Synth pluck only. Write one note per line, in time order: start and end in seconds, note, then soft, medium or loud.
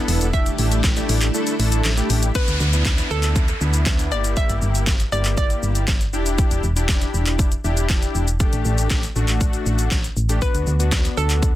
0.00 0.29 B5 loud
0.33 1.30 E5 medium
2.35 3.13 B4 medium
3.11 4.15 A4 medium
4.12 4.38 D5 loud
4.37 4.84 E5 loud
5.12 5.36 D5 loud
5.38 5.85 D5 loud
10.42 11.20 B4 medium
11.17 11.55 A4 medium